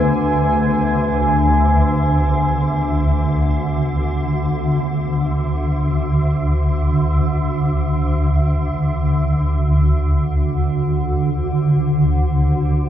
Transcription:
Already playing: D2 D3 A3 D4 B4 G#5
4.33 D2 D3

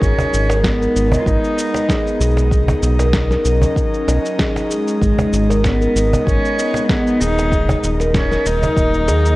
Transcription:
Already playing: D#4 D#5
0.01 G#1 G#3 C#4 G#4, kick, shaker
0.18 cajon bass, shaker
0.33 G#1, shaker
0.50 A#4, cajon slap, shaker
0.58 B3
0.64 B3, kick, snare, shaker
0.81 A#4, shaker
0.96 G#1, shaker
1.12 D#5, cajon bass, shaker
1.20 F4
1.26 G#1 D#4, kick, shaker
1.44 shaker
1.58 D#5, shaker
1.74 cajon slap, shaker
1.89 G#4, kick, snare, shaker
2.07 shaker
2.20 B1 G#4, shaker
2.37 cajon slap, shaker
2.51 F#3 G#4, kick, shaker
2.68 cajon bass, shaker
2.82 B1 C#4, shaker
2.99 A#4, cajon slap, shaker
3.14 kick, snare, shaker
3.31 A#4, snare, shaker
3.45 B1, shaker
3.62 D#5, cajon bass, shaker
3.77 kick, shaker
3.94 shaker
4.08 B1 D#5, cajon slap, shaker
4.26 shaker
4.39 G#4, kick, snare, shaker
4.56 cajon slap, shaker
4.70 G#3 G#4, shaker
4.88 shaker
5.01 G#1 G#3, kick, shaker
5.19 cajon bass, shaker
5.33 G#1, shaker
5.50 A#4, cajon slap, shaker
5.64 B3, kick, snare, shaker
5.81 A#4, shaker
5.95 G#1, shaker
6.13 D#5, cajon bass, shaker
6.27 G#1 C#4, kick, shaker
6.45 shaker
6.58 D#5, shaker
6.74 cajon slap, shaker
6.89 B3 G#4, kick, snare, shaker
7.07 shaker
7.20 D#1 D#4 G#4, shaker
7.38 cajon slap, shaker
7.51 F#3 G#4, kick, shaker
7.69 cajon bass, shaker
7.73 A#4
7.83 D#1, shaker
8.00 A#4, cajon slap, shaker
8.09 A#3
8.14 C#4, kick, snare, shaker
8.31 A#4, snare, shaker
8.45 D#1 D#4, shaker
8.62 D#5, cajon bass, shaker
8.77 D#1, kick, shaker
8.94 shaker
9.08 D#2 G#4, cajon slap, shaker
9.26 shaker

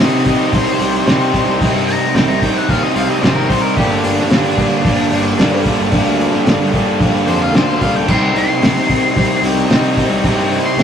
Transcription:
Already playing: C3 G3 C4
0.00 C3 G3 C4 D#4 G4 C5 D#5, snare
0.26 C3 G3 C4 D#4 G4 C5 D#5, kick, open hi-hat
0.53 C2 C3 G3 C4 D#4 G4 C5, kick, open hi-hat
0.79 C2 C3 G3 C4 D#4 G4 C5 D#5, open hi-hat
1.06 C3 G3 C4 D#4 G4 C5 D#5, snare, open hi-hat
1.33 C3 G3 C4 D#4 G4 C5 D#5, kick, open hi-hat
1.47 C2
1.60 C3 G3 C4 D#4 G4 C5 D#5, kick, open hi-hat
1.74 G2
1.87 D#4 G4 C5 D#5 A#5, open hi-hat
2.14 C2 C3 G3 C4 D#4 G4 C5 D#5 G5, snare, open hi-hat
2.28 C2 A#5
2.41 C3 G3 C4 D#4 G4 C5 D#5 G5, kick, open hi-hat
2.57 F#5
2.68 D#2 C3 G3 C4 D#4 G4 C5 D#5 F5, kick, open hi-hat
2.83 D#5
2.94 C2 C3 G3 C4 D#4 G4 C5 D#5 F5, open hi-hat
3.10 D#5
3.20 G#1 C3 G3 C4 D#4 G4 C5 D#5, snare, open hi-hat
3.35 A#4
3.48 C3 G3 C4 D#4 G4 C5 D#5, kick, open hi-hat
3.61 A#4
3.76 G1 G2 D3 G3 A#3 D4 G4 A#4 D5, kick, open hi-hat
4.02 G1 D4 G4 A#4 D5, open hi-hat
4.19 snare
4.30 G2 D3 G3 A#3 D4 G4 A#4 D5, snare, open hi-hat
4.56 G2 D3 G3 A#3 D4 G4 D5, kick, open hi-hat
4.83 G1 G2 D3 G3 A#3 D4 G4 A#4 D5, kick, open hi-hat
5.11 G1 G2 D3 G3 D4 G4 A#4 D5, open hi-hat
5.38 G2 D3 G3 A#3 D4 G4 A#4 D5, snare, open hi-hat
5.65 G2 D3 G3 A#3 D4 G4 A#4 D5, kick, open hi-hat
5.80 G1
5.91 G2 D3 G3 A#3 D4 G4 A#4 D5, kick, open hi-hat
6.06 D2
6.18 D4 G4 A#4 D5, open hi-hat
6.34 snare
6.45 G1 G2 D3 G3 A#3 D4 G4 A#4 D5, snare, open hi-hat
6.60 G1
6.72 G2 D3 G3 A#3 D4 G4 A#4 D5, kick, open hi-hat
6.99 A#1 G2 D3 G3 A#3 D4 G4 A#4 D5, kick, open hi-hat
7.26 F2 G2 D3 G3 D4 G4 A#4 C5 D5, open hi-hat
7.41 F5
7.54 D2 G2 D3 G3 A#3 D4 G4 A#4 C5 D5, snare, open hi-hat
7.80 C2 G2 D3 G3 A#3 D4 G4 D5 F5, kick, open hi-hat
7.96 G5
8.07 C2 C3 G3 C4 D#4 G4 C5 D#5 C6, kick, crash
8.34 C2 D#4 G4 C5 D5 C6, open hi-hat
8.61 C3 G3 C4 D#4 G4 D#5, snare, open hi-hat
8.77 snare
8.88 C3 G3 C4 D#4 G4 C5 D#5, kick, open hi-hat
9.15 C2 C3 G3 C4 D#4 G4 C5 D#5, kick, open hi-hat
9.42 C2 C3 G3 C4 D#4 G4 C5 D#5, open hi-hat
9.69 C3 G3 C4 D#4 G4 C5 D#5, snare, open hi-hat
9.97 C3 G3 C4 D#4 G4 C5 D#5, kick, open hi-hat
10.10 C2
10.23 C3 G3 C4 D#4 G4 C5 D#5, kick, open hi-hat
10.37 G2
10.51 D#4 G4 C5 D#5, open hi-hat
10.66 C6
10.77 C2 C3 G3 C4 D#4 G4 C5 D#5, snare, open hi-hat

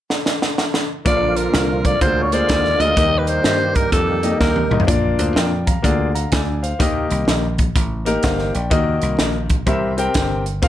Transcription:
0.10 snare
0.26 snare
0.42 snare
0.58 snare
0.74 snare
1.05 A#1 A#2 D3 F3 A#3 D4 F4 D5, kick, closed hi-hat
1.37 A#4, closed hi-hat
1.54 C2, snare, closed hi-hat
1.85 D5, kick, closed hi-hat
2.01 D2 C3 D3 G#3 A#3 F4 G#4 C5 D5, kick, closed hi-hat
2.08 D3
2.23 C#5
2.32 A#3 F4 G#4 C5 D5, closed hi-hat
2.49 D#2, kick, snare, closed hi-hat
2.65 snare
2.80 D2 A#3 F4 G#4 D5 D#5, closed hi-hat
2.97 D#2 D#3 G3 A#3 D#4 G4 D#5, kick, closed hi-hat
3.19 B4
3.27 C5, closed hi-hat
3.44 G2, snare, closed hi-hat
3.75 A#4, kick, closed hi-hat
3.92 F2 A4, kick, closed hi-hat
4.23 A#3 D#4 G4 D#5, closed hi-hat
4.40 D#2 A#4, kick, snare
4.56 high tom
4.71 C2 A#3 D#4 G4 D#5, mid tom
4.80 floor tom
4.87 A#1 A#2 A#3 D4 F4 D5, kick, closed hi-hat
5.19 D2 C5 F5, closed hi-hat
5.36 F2 D5 G5, snare, closed hi-hat
5.67 F5 A#5, kick, closed hi-hat
5.82 D2 D3 A#3 F4 G#4 D5, kick, closed hi-hat
6.15 F5 A#5, closed hi-hat
6.32 D2 D5 G#5, kick, snare, closed hi-hat
6.63 C5 F5, closed hi-hat
6.79 D#2 D#3 A#3 D#4 G4 D#5, kick, closed hi-hat
7.11 C2, closed hi-hat
7.28 A#1, snare, closed hi-hat
7.58 kick, closed hi-hat
7.76 A1, kick, closed hi-hat
8.05 A#3 D#4 G4 A#4, closed hi-hat
8.23 G1 F5, kick, snare, closed hi-hat
8.39 snare
8.55 A#1 D5 G5, closed hi-hat
8.70 D#2 D#3 A#3 D#4 F#4 D#5, kick, closed hi-hat
9.02 C2, closed hi-hat
9.19 A#1, snare, closed hi-hat
9.50 kick, closed hi-hat
9.66 C2 C3 C4 G4 A#4 E5, kick, closed hi-hat
9.97 C4 G4 A#4 G5, closed hi-hat
10.14 G1, kick, snare, closed hi-hat
10.46 closed hi-hat
10.62 F1 C4 F4 A#4 F5, kick, closed hi-hat

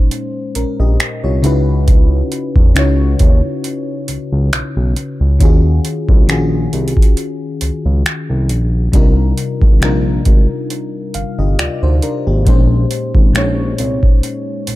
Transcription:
Already playing: A#2 G#3 C#4 D#4 C5
0.11 closed hi-hat
0.55 A#1 C#4 A#4, closed hi-hat
0.79 A#1 G4 D#5
1.00 finger snap, closed hi-hat
1.24 C2 F4 C#5
1.42 C#2 C#3 C#4 D#4 E4 F#4, closed hi-hat
1.46 B4
1.88 kick, closed hi-hat
2.32 closed hi-hat
2.56 E2, kick
2.75 C#2 C#3 C#4 D#4 E4 F#4, finger snap, closed hi-hat
2.79 C#5
3.19 D#2, kick, closed hi-hat
3.64 closed hi-hat
4.08 C#2, closed hi-hat
4.32 C#2
4.52 B1, finger snap, closed hi-hat
4.76 B1
4.96 closed hi-hat
5.20 C#2
5.39 D#2 D#3 C#4 F4 F#4, kick, closed hi-hat
5.43 G#4
5.85 closed hi-hat
6.09 C2, kick
6.27 A#1 D#3 C#4 F4 F#4, finger snap, closed hi-hat
6.32 G#4
6.73 C2, closed hi-hat
6.88 closed hi-hat
6.97 kick
7.02 closed hi-hat
7.17 closed hi-hat
7.61 C#2, closed hi-hat
7.85 C#2
8.06 finger snap, closed hi-hat
8.29 C2
8.49 A#1, closed hi-hat
8.92 C2 C3 G3 D4 D#4 F4, kick, closed hi-hat
8.96 A#4
9.38 closed hi-hat
9.62 G#1, kick
9.80 A#1 C3 G3 D4 D#4 F4, finger snap, closed hi-hat
9.84 A#4
10.25 G#1, kick, closed hi-hat
10.70 closed hi-hat
11.14 G1 F5, closed hi-hat
11.38 G1 G4 D#5
11.59 D2 F4 D5, finger snap, closed hi-hat
11.83 D2 D#4 C5
12.02 D4 A#4, closed hi-hat
12.27 G#1 A#3 G4
12.45 A#1 A#2 G#3 C#4 D#4, kick, closed hi-hat
12.49 C5
12.91 closed hi-hat
13.15 G#1, kick
13.33 A#1 A#2 G#3 C#4 D#4, finger snap, closed hi-hat
13.38 C#5
13.78 C2, closed hi-hat
14.03 kick
14.23 closed hi-hat
14.67 A#1, closed hi-hat

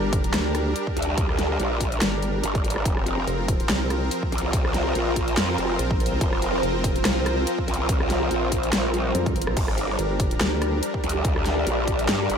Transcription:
Already playing: G1 G3 D4 G4 A#4
0.13 kick, closed hi-hat
0.24 closed hi-hat
0.34 D2, cross-stick, snare, closed hi-hat
0.55 cross-stick, closed hi-hat
0.76 closed hi-hat
0.87 kick
0.97 D2, closed hi-hat
1.02 closed hi-hat
1.18 kick, closed hi-hat
1.29 cross-stick
1.39 snare, closed hi-hat
1.60 A#1, closed hi-hat
1.81 kick, closed hi-hat
1.92 closed hi-hat
2.01 G1, snare, closed hi-hat
2.22 closed hi-hat
2.44 G1, closed hi-hat
2.55 kick, closed hi-hat
2.64 closed hi-hat
2.70 closed hi-hat
2.76 cross-stick
2.85 F1 F3 C4 F4 A#4, kick, closed hi-hat
2.97 cross-stick
3.06 C5, closed hi-hat
3.27 F1, closed hi-hat
3.48 kick, closed hi-hat
3.60 closed hi-hat
3.69 C2, cross-stick, snare, closed hi-hat
3.90 cross-stick, closed hi-hat
4.11 closed hi-hat
4.23 kick
4.32 C2, closed hi-hat
4.38 closed hi-hat
4.53 kick, closed hi-hat
4.65 cross-stick
4.74 snare, closed hi-hat
4.95 A#1, closed hi-hat
5.16 kick, closed hi-hat
5.28 closed hi-hat
5.37 F2, snare, closed hi-hat
5.58 F1, closed hi-hat
5.79 A#1, closed hi-hat
5.91 kick
6.00 closed hi-hat
6.06 closed hi-hat
6.12 C2
6.21 F1, kick, closed hi-hat
6.33 cross-stick
6.42 closed hi-hat
6.63 F1, closed hi-hat
6.84 kick, closed hi-hat
6.96 closed hi-hat
7.05 C2, cross-stick, snare, closed hi-hat
7.26 cross-stick, closed hi-hat
7.47 closed hi-hat
7.58 kick
7.68 C2, closed hi-hat
7.74 closed hi-hat
7.89 kick, closed hi-hat
8.00 cross-stick
8.10 snare, closed hi-hat
8.31 A#1, closed hi-hat
8.52 kick, closed hi-hat
8.63 closed hi-hat
8.73 A#1, snare, closed hi-hat, swell
8.94 closed hi-hat
9.15 F2, closed hi-hat
9.26 kick, closed hi-hat
9.36 G1, closed hi-hat
9.42 closed hi-hat
9.47 A#1, cross-stick
9.57 G1 G3 D4 G4 A#4 D5, kick, closed hi-hat, crash
9.68 cross-stick
9.78 closed hi-hat
9.99 G1, closed hi-hat
10.20 kick, closed hi-hat
10.31 closed hi-hat
10.41 D2, cross-stick, snare, closed hi-hat
10.62 cross-stick, closed hi-hat
10.83 closed hi-hat
10.94 kick
11.04 D2, closed hi-hat
11.09 closed hi-hat
11.25 kick, closed hi-hat
11.36 cross-stick
11.46 snare, closed hi-hat
11.67 A#1, closed hi-hat
11.88 kick, closed hi-hat
11.99 closed hi-hat
12.09 G2, snare, closed hi-hat
12.30 G1, closed hi-hat

